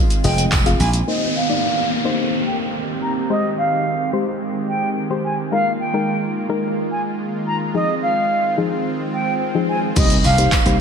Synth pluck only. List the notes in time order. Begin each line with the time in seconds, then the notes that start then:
Already playing: C4 F4 G#4 D#5
0.24 C4 F4 G#4 D#5
0.66 C4 F4 G#4 F5
1.07 A#3 D#4 C5
1.49 A#3 D#4 D5
2.05 A#3 D#4 C5
3.30 G#3 G4 C5
4.13 G#3 G4 C5
5.10 G#3 G4 C5
5.52 G#3 D#4 A#4
5.93 G#3 D#4 A#4
6.49 G#3 D#4 A#4
7.74 F3 D#4 G#4
8.57 F3 D#4 G#4
9.55 F3 D#4 G#4
9.96 A#3 D#4 G4 C5
10.38 A#3 D#4 G4 C5
10.66 A#3 D#4 G4 C5